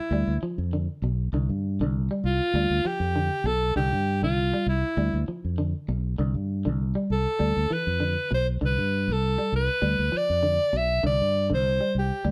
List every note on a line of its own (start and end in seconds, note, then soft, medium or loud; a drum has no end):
0.00 0.40 E4 medium
0.11 0.26 D2 loud
0.11 0.32 G3 medium
0.27 0.41 D2 medium
0.42 0.62 F3 medium
0.42 muted fingered electric bass stroke soft
0.58 0.86 F2 medium
0.73 0.93 D3 medium
1.02 1.30 B1 medium
1.02 1.23 B2 medium
1.33 1.48 C2 medium
1.33 1.53 D3 medium
1.49 1.81 G2 medium
1.80 2.08 C2 medium
1.80 2.00 D3 medium
2.11 2.30 G3 medium
2.24 2.39 C2 medium
2.24 2.88 F4 medium
2.54 2.69 D2 loud
2.54 2.75 G3 medium
2.70 2.83 D2 medium
2.85 3.05 F3 medium
2.85 3.48 G4 loud
3.00 3.29 F2 medium
3.16 3.35 D3 medium
3.44 3.73 B1 medium
3.44 3.66 B2 medium
3.44 3.76 A4 medium
3.76 3.91 C2 medium
3.76 3.96 D3 medium
3.76 4.20 G4 loud
3.92 4.24 G2 medium
4.22 4.51 C2 medium
4.22 4.43 D3 medium
4.22 4.64 F4 medium
4.54 4.73 G3 medium
4.66 4.82 C2 medium
4.66 5.25 E4 medium
4.97 5.12 D2 loud
4.97 5.17 G3 medium
5.13 5.26 D2 medium
5.28 5.48 F3 medium
5.28 muted fingered electric bass stroke soft
5.45 5.72 F2 medium
5.58 5.78 D3 medium
5.88 6.16 B1 medium
5.88 6.08 B2 medium
6.18 6.34 C2 medium
6.18 6.38 D3 medium
6.34 6.67 G2 medium
6.65 6.94 C2 medium
6.65 6.85 D3 medium
6.95 7.15 G3 medium
7.10 7.25 C2 medium
7.10 7.74 A4 medium
7.39 7.55 D2 medium
7.39 7.59 G3 medium
7.56 7.69 D2 medium
7.70 7.90 E3 medium
7.70 8.32 B4 medium
7.87 8.15 F2 medium
8.00 8.20 D3 medium
8.31 8.59 B1 medium
8.31 8.51 B2 medium
8.31 8.47 C5 medium
8.61 8.77 C2 medium
8.61 8.81 D3 medium
8.66 9.14 B4 medium
8.78 9.09 G2 medium
9.07 9.36 C2 medium
9.12 9.55 A4 medium
9.38 9.58 G3 medium
9.52 9.68 C2 medium
9.52 10.19 B4 medium
9.82 9.98 D2 loud
9.82 10.02 G3 medium
9.99 10.12 D2 medium
10.12 10.32 F3 medium
10.17 10.78 D5 loud
10.30 10.58 F2 medium
10.43 10.63 D3 medium
10.73 11.01 B1 medium
10.73 10.93 B2 medium
10.77 11.06 E5 medium
11.03 11.19 C2 medium
11.03 11.23 D3 medium
11.03 11.49 D5 medium
11.21 11.52 G2 medium
11.50 11.79 C2 medium
11.50 11.70 D3 medium
11.54 11.94 C5 medium
11.81 12.00 G3 medium
11.95 12.10 C2 medium
11.95 12.29 G4 medium
12.25 12.31 D2 loud
12.25 12.31 G3 medium